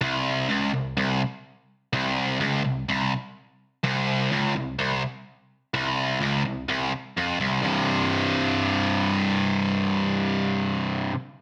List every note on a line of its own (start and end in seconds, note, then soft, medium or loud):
0.01 0.48 C2 loud
0.49 0.73 C#2 loud
0.73 0.93 C2 medium
0.97 1.21 C2 loud
1.93 2.40 C2 loud
2.40 2.64 C#2 loud
2.64 2.84 C2 medium
2.89 3.12 C2 loud
3.84 4.30 C2 loud
4.31 4.54 C#2 loud
4.56 4.74 C2 medium
4.79 5.02 C2 loud
5.74 6.20 C2 loud
6.20 6.44 C#2 loud
6.45 6.64 C2 medium
6.69 6.92 C2 loud
7.17 7.39 F2 medium
7.40 7.61 C2 medium
7.62 11.12 C2 loud
7.62 11.14 G2 loud
7.62 11.15 C3 loud